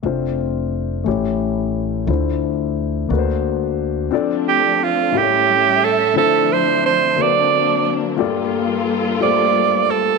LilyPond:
<<
  \new Staff \with { instrumentName = "Alto saxophone" } { \time 6/8 \key f \major \tempo 4. = 59 r2. | r2. | r8 g'8 f'8 g'4 a'8 | a'8 c''8 c''8 d''4 r8 |
r4. d''4 a'8 | }
  \new Staff \with { instrumentName = "Grand piano" } { \time 6/8 \key f \major <a c' d' f' c''>4. <a, a cis' e' g' cis''>4. | <d a d' e' f' c''>4. <d bes d' fis' a' b' c''>4. | <c' d' f' a' d''>4. <a, a cis' e' g' bes' cis''>4. | <d a d' e' f' c''>4. <d bes d' fis' a' b' c''>4. |
<g, a bes f' g' a' d''>4. <a bes f' g' a' c''>4. | }
  \new Staff \with { instrumentName = "String section" } { \time 6/8 \key f \major << { r2. | r2. | d'4. e''4.~ | e''4. d'4. |
f'2. | } \\ { r2. | r2. | <f a c'>4. <g a cis'>4. | <f c' d'>4. <fis bes>4. |
<g a'>2. | } >> }
  \new Staff \with { instrumentName = "Upright bass" } { \clef bass \time 6/8 \key f \major f,,4. a,,4. | d,4. d,4. | r2. | r2. |
r2. | }
>>